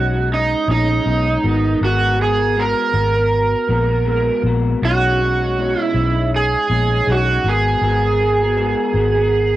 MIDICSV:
0, 0, Header, 1, 4, 480
1, 0, Start_track
1, 0, Key_signature, 5, "minor"
1, 0, Tempo, 750939
1, 1159, Time_signature, 4, 2, 24, 8
1, 6114, End_track
2, 0, Start_track
2, 0, Title_t, "Electric slide guitar"
2, 0, Program_c, 0, 29
2, 0, Note_on_c, 0, 66, 75
2, 179, Note_off_c, 0, 66, 0
2, 215, Note_on_c, 0, 63, 79
2, 445, Note_off_c, 0, 63, 0
2, 453, Note_on_c, 0, 63, 80
2, 1140, Note_off_c, 0, 63, 0
2, 1179, Note_on_c, 0, 66, 79
2, 1416, Note_off_c, 0, 66, 0
2, 1420, Note_on_c, 0, 68, 93
2, 1656, Note_off_c, 0, 68, 0
2, 1660, Note_on_c, 0, 70, 76
2, 2824, Note_off_c, 0, 70, 0
2, 3099, Note_on_c, 0, 66, 94
2, 3719, Note_off_c, 0, 66, 0
2, 3719, Note_on_c, 0, 64, 94
2, 4024, Note_off_c, 0, 64, 0
2, 4065, Note_on_c, 0, 68, 103
2, 4546, Note_off_c, 0, 68, 0
2, 4548, Note_on_c, 0, 66, 92
2, 4780, Note_off_c, 0, 66, 0
2, 4784, Note_on_c, 0, 68, 89
2, 6114, Note_off_c, 0, 68, 0
2, 6114, End_track
3, 0, Start_track
3, 0, Title_t, "Clean electric guitar"
3, 0, Program_c, 1, 27
3, 0, Note_on_c, 1, 47, 50
3, 0, Note_on_c, 1, 56, 54
3, 0, Note_on_c, 1, 61, 65
3, 0, Note_on_c, 1, 63, 65
3, 87, Note_off_c, 1, 63, 0
3, 91, Note_off_c, 1, 47, 0
3, 92, Note_off_c, 1, 56, 0
3, 94, Note_off_c, 1, 61, 0
3, 95, Note_on_c, 1, 63, 44
3, 102, Note_on_c, 1, 61, 44
3, 110, Note_on_c, 1, 56, 38
3, 437, Note_off_c, 1, 56, 0
3, 441, Note_off_c, 1, 61, 0
3, 441, Note_off_c, 1, 63, 0
3, 441, Note_on_c, 1, 47, 57
3, 445, Note_on_c, 1, 56, 55
3, 448, Note_on_c, 1, 61, 61
3, 453, Note_on_c, 1, 63, 63
3, 558, Note_off_c, 1, 63, 0
3, 566, Note_on_c, 1, 63, 48
3, 569, Note_off_c, 1, 61, 0
3, 572, Note_off_c, 1, 47, 0
3, 572, Note_off_c, 1, 56, 0
3, 577, Note_on_c, 1, 61, 45
3, 580, Note_on_c, 1, 56, 40
3, 665, Note_off_c, 1, 56, 0
3, 668, Note_off_c, 1, 61, 0
3, 671, Note_on_c, 1, 47, 69
3, 673, Note_off_c, 1, 63, 0
3, 673, Note_on_c, 1, 56, 71
3, 676, Note_on_c, 1, 61, 68
3, 681, Note_on_c, 1, 63, 78
3, 793, Note_off_c, 1, 63, 0
3, 800, Note_on_c, 1, 63, 45
3, 802, Note_off_c, 1, 61, 0
3, 807, Note_off_c, 1, 47, 0
3, 808, Note_off_c, 1, 56, 0
3, 810, Note_on_c, 1, 61, 41
3, 820, Note_on_c, 1, 56, 38
3, 902, Note_off_c, 1, 56, 0
3, 910, Note_off_c, 1, 61, 0
3, 910, Note_on_c, 1, 56, 53
3, 913, Note_off_c, 1, 63, 0
3, 913, Note_on_c, 1, 59, 57
3, 917, Note_on_c, 1, 66, 52
3, 923, Note_on_c, 1, 70, 52
3, 1149, Note_off_c, 1, 56, 0
3, 1153, Note_off_c, 1, 59, 0
3, 1157, Note_on_c, 1, 56, 72
3, 1158, Note_off_c, 1, 66, 0
3, 1159, Note_off_c, 1, 70, 0
3, 1160, Note_on_c, 1, 59, 82
3, 1166, Note_on_c, 1, 66, 79
3, 1167, Note_on_c, 1, 70, 73
3, 1382, Note_off_c, 1, 56, 0
3, 1389, Note_off_c, 1, 59, 0
3, 1390, Note_on_c, 1, 56, 49
3, 1394, Note_off_c, 1, 66, 0
3, 1396, Note_on_c, 1, 59, 58
3, 1400, Note_off_c, 1, 70, 0
3, 1402, Note_on_c, 1, 66, 58
3, 1408, Note_on_c, 1, 70, 61
3, 1518, Note_off_c, 1, 70, 0
3, 1524, Note_off_c, 1, 66, 0
3, 1526, Note_off_c, 1, 56, 0
3, 1526, Note_on_c, 1, 70, 47
3, 1530, Note_off_c, 1, 59, 0
3, 1531, Note_on_c, 1, 66, 39
3, 1541, Note_on_c, 1, 59, 41
3, 1630, Note_off_c, 1, 59, 0
3, 1633, Note_off_c, 1, 70, 0
3, 1634, Note_on_c, 1, 56, 68
3, 1636, Note_off_c, 1, 66, 0
3, 1637, Note_on_c, 1, 59, 66
3, 1641, Note_on_c, 1, 70, 76
3, 1643, Note_on_c, 1, 66, 71
3, 1862, Note_off_c, 1, 56, 0
3, 1869, Note_off_c, 1, 59, 0
3, 1869, Note_off_c, 1, 66, 0
3, 1869, Note_on_c, 1, 56, 51
3, 1876, Note_on_c, 1, 59, 54
3, 1877, Note_on_c, 1, 66, 51
3, 1880, Note_off_c, 1, 70, 0
3, 1887, Note_on_c, 1, 70, 60
3, 1999, Note_off_c, 1, 70, 0
3, 2006, Note_off_c, 1, 56, 0
3, 2007, Note_on_c, 1, 70, 45
3, 2010, Note_off_c, 1, 59, 0
3, 2010, Note_off_c, 1, 66, 0
3, 2020, Note_on_c, 1, 66, 41
3, 2024, Note_on_c, 1, 59, 34
3, 2346, Note_off_c, 1, 59, 0
3, 2350, Note_on_c, 1, 56, 59
3, 2352, Note_off_c, 1, 66, 0
3, 2354, Note_on_c, 1, 59, 69
3, 2357, Note_off_c, 1, 70, 0
3, 2360, Note_on_c, 1, 66, 68
3, 2369, Note_on_c, 1, 70, 83
3, 2475, Note_off_c, 1, 70, 0
3, 2482, Note_off_c, 1, 66, 0
3, 2482, Note_on_c, 1, 70, 55
3, 2486, Note_off_c, 1, 56, 0
3, 2488, Note_off_c, 1, 59, 0
3, 2490, Note_on_c, 1, 66, 48
3, 2497, Note_on_c, 1, 59, 43
3, 2587, Note_off_c, 1, 59, 0
3, 2591, Note_off_c, 1, 66, 0
3, 2592, Note_on_c, 1, 56, 85
3, 2594, Note_off_c, 1, 70, 0
3, 2595, Note_on_c, 1, 59, 78
3, 2599, Note_on_c, 1, 66, 73
3, 2601, Note_on_c, 1, 70, 84
3, 2835, Note_off_c, 1, 56, 0
3, 2837, Note_off_c, 1, 59, 0
3, 2839, Note_off_c, 1, 66, 0
3, 2840, Note_off_c, 1, 70, 0
3, 2842, Note_on_c, 1, 56, 59
3, 2848, Note_on_c, 1, 59, 58
3, 2852, Note_on_c, 1, 66, 62
3, 2853, Note_on_c, 1, 70, 69
3, 3079, Note_on_c, 1, 47, 69
3, 3080, Note_off_c, 1, 56, 0
3, 3083, Note_off_c, 1, 59, 0
3, 3085, Note_off_c, 1, 66, 0
3, 3086, Note_off_c, 1, 70, 0
3, 3087, Note_on_c, 1, 56, 71
3, 3093, Note_on_c, 1, 61, 89
3, 3093, Note_on_c, 1, 63, 84
3, 3311, Note_off_c, 1, 47, 0
3, 3318, Note_on_c, 1, 47, 57
3, 3320, Note_off_c, 1, 56, 0
3, 3326, Note_off_c, 1, 61, 0
3, 3326, Note_off_c, 1, 63, 0
3, 3328, Note_on_c, 1, 56, 59
3, 3337, Note_on_c, 1, 61, 62
3, 3341, Note_on_c, 1, 63, 58
3, 3445, Note_off_c, 1, 63, 0
3, 3450, Note_off_c, 1, 47, 0
3, 3453, Note_on_c, 1, 63, 52
3, 3454, Note_off_c, 1, 61, 0
3, 3455, Note_off_c, 1, 56, 0
3, 3462, Note_on_c, 1, 61, 46
3, 3470, Note_on_c, 1, 56, 39
3, 3560, Note_off_c, 1, 63, 0
3, 3561, Note_off_c, 1, 56, 0
3, 3562, Note_off_c, 1, 61, 0
3, 3564, Note_on_c, 1, 47, 75
3, 3569, Note_on_c, 1, 56, 76
3, 3570, Note_on_c, 1, 61, 72
3, 3574, Note_on_c, 1, 63, 82
3, 3788, Note_off_c, 1, 47, 0
3, 3794, Note_off_c, 1, 56, 0
3, 3796, Note_on_c, 1, 47, 51
3, 3802, Note_off_c, 1, 61, 0
3, 3802, Note_off_c, 1, 63, 0
3, 3802, Note_on_c, 1, 56, 66
3, 3809, Note_on_c, 1, 63, 65
3, 3810, Note_on_c, 1, 61, 62
3, 3923, Note_off_c, 1, 63, 0
3, 3929, Note_off_c, 1, 47, 0
3, 3930, Note_off_c, 1, 61, 0
3, 3930, Note_on_c, 1, 63, 44
3, 3932, Note_off_c, 1, 56, 0
3, 3937, Note_on_c, 1, 61, 42
3, 3948, Note_on_c, 1, 56, 35
3, 4273, Note_off_c, 1, 56, 0
3, 4276, Note_on_c, 1, 47, 57
3, 4279, Note_off_c, 1, 61, 0
3, 4279, Note_off_c, 1, 63, 0
3, 4281, Note_on_c, 1, 56, 58
3, 4287, Note_on_c, 1, 61, 58
3, 4289, Note_on_c, 1, 63, 58
3, 4399, Note_off_c, 1, 63, 0
3, 4407, Note_on_c, 1, 63, 50
3, 4408, Note_off_c, 1, 56, 0
3, 4408, Note_off_c, 1, 61, 0
3, 4409, Note_off_c, 1, 47, 0
3, 4415, Note_on_c, 1, 61, 44
3, 4416, Note_on_c, 1, 56, 43
3, 4510, Note_off_c, 1, 56, 0
3, 4512, Note_off_c, 1, 61, 0
3, 4513, Note_on_c, 1, 47, 69
3, 4517, Note_off_c, 1, 63, 0
3, 4518, Note_on_c, 1, 56, 77
3, 4520, Note_on_c, 1, 61, 75
3, 4526, Note_on_c, 1, 63, 84
3, 4647, Note_off_c, 1, 63, 0
3, 4648, Note_off_c, 1, 47, 0
3, 4650, Note_off_c, 1, 56, 0
3, 4651, Note_off_c, 1, 61, 0
3, 4655, Note_on_c, 1, 63, 46
3, 4661, Note_on_c, 1, 61, 39
3, 4665, Note_on_c, 1, 56, 36
3, 4754, Note_off_c, 1, 56, 0
3, 4759, Note_off_c, 1, 61, 0
3, 4761, Note_off_c, 1, 63, 0
3, 4761, Note_on_c, 1, 56, 50
3, 4761, Note_on_c, 1, 59, 46
3, 4769, Note_on_c, 1, 66, 56
3, 4776, Note_on_c, 1, 70, 50
3, 4990, Note_off_c, 1, 56, 0
3, 4992, Note_off_c, 1, 59, 0
3, 4996, Note_off_c, 1, 66, 0
3, 4998, Note_on_c, 1, 56, 66
3, 4999, Note_off_c, 1, 70, 0
3, 5000, Note_on_c, 1, 59, 67
3, 5003, Note_on_c, 1, 66, 76
3, 5007, Note_on_c, 1, 70, 77
3, 5230, Note_off_c, 1, 56, 0
3, 5237, Note_off_c, 1, 59, 0
3, 5237, Note_on_c, 1, 56, 54
3, 5241, Note_off_c, 1, 66, 0
3, 5243, Note_off_c, 1, 70, 0
3, 5244, Note_on_c, 1, 59, 50
3, 5248, Note_on_c, 1, 66, 59
3, 5255, Note_on_c, 1, 70, 63
3, 5369, Note_off_c, 1, 70, 0
3, 5370, Note_off_c, 1, 56, 0
3, 5373, Note_off_c, 1, 59, 0
3, 5375, Note_off_c, 1, 66, 0
3, 5377, Note_on_c, 1, 70, 51
3, 5388, Note_on_c, 1, 66, 47
3, 5393, Note_on_c, 1, 59, 43
3, 5467, Note_off_c, 1, 59, 0
3, 5470, Note_on_c, 1, 56, 71
3, 5473, Note_off_c, 1, 66, 0
3, 5475, Note_off_c, 1, 70, 0
3, 5475, Note_on_c, 1, 59, 84
3, 5481, Note_on_c, 1, 66, 78
3, 5482, Note_on_c, 1, 70, 87
3, 5714, Note_off_c, 1, 56, 0
3, 5716, Note_off_c, 1, 59, 0
3, 5719, Note_off_c, 1, 66, 0
3, 5720, Note_off_c, 1, 70, 0
3, 5720, Note_on_c, 1, 56, 61
3, 5727, Note_on_c, 1, 59, 53
3, 5729, Note_on_c, 1, 66, 56
3, 5738, Note_on_c, 1, 70, 61
3, 5844, Note_off_c, 1, 70, 0
3, 5846, Note_off_c, 1, 66, 0
3, 5851, Note_off_c, 1, 56, 0
3, 5851, Note_on_c, 1, 70, 48
3, 5854, Note_on_c, 1, 66, 43
3, 5855, Note_off_c, 1, 59, 0
3, 5863, Note_on_c, 1, 59, 42
3, 6114, Note_off_c, 1, 59, 0
3, 6114, Note_off_c, 1, 66, 0
3, 6114, Note_off_c, 1, 70, 0
3, 6114, End_track
4, 0, Start_track
4, 0, Title_t, "Fingered electric bass"
4, 0, Program_c, 2, 33
4, 0, Note_on_c, 2, 35, 70
4, 341, Note_off_c, 2, 35, 0
4, 434, Note_on_c, 2, 34, 86
4, 628, Note_off_c, 2, 34, 0
4, 675, Note_on_c, 2, 35, 75
4, 869, Note_off_c, 2, 35, 0
4, 920, Note_on_c, 2, 32, 103
4, 1112, Note_off_c, 2, 32, 0
4, 1157, Note_on_c, 2, 32, 88
4, 1744, Note_off_c, 2, 32, 0
4, 1877, Note_on_c, 2, 32, 78
4, 2261, Note_off_c, 2, 32, 0
4, 2358, Note_on_c, 2, 34, 86
4, 2742, Note_off_c, 2, 34, 0
4, 2835, Note_on_c, 2, 34, 89
4, 3028, Note_off_c, 2, 34, 0
4, 3082, Note_on_c, 2, 35, 95
4, 3667, Note_off_c, 2, 35, 0
4, 3798, Note_on_c, 2, 35, 79
4, 4182, Note_off_c, 2, 35, 0
4, 4280, Note_on_c, 2, 34, 83
4, 4472, Note_off_c, 2, 34, 0
4, 4521, Note_on_c, 2, 35, 84
4, 4712, Note_off_c, 2, 35, 0
4, 4756, Note_on_c, 2, 32, 106
4, 4949, Note_off_c, 2, 32, 0
4, 4995, Note_on_c, 2, 32, 88
4, 5583, Note_off_c, 2, 32, 0
4, 5714, Note_on_c, 2, 32, 84
4, 6099, Note_off_c, 2, 32, 0
4, 6114, End_track
0, 0, End_of_file